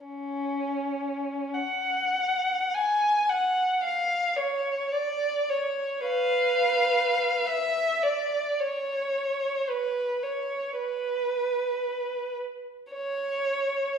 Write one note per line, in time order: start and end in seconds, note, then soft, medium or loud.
0.05 1.54 C#4 soft
1.55 2.73 F#5 soft
2.75 3.29 G#5 medium
3.29 3.83 F#5 soft
3.84 4.36 F5 medium
4.36 4.92 C#5 soft
4.92 5.50 D5 soft
5.50 6.08 C#5 soft
6.06 7.43 B4 soft
6.06 7.47 F5 soft
7.47 8.04 E5 soft
8.03 8.61 D5 soft
8.60 9.70 C#5 soft
9.69 10.24 B4 soft
10.23 10.80 C#5 soft
10.79 12.37 B4 soft
12.92 13.97 C#5 medium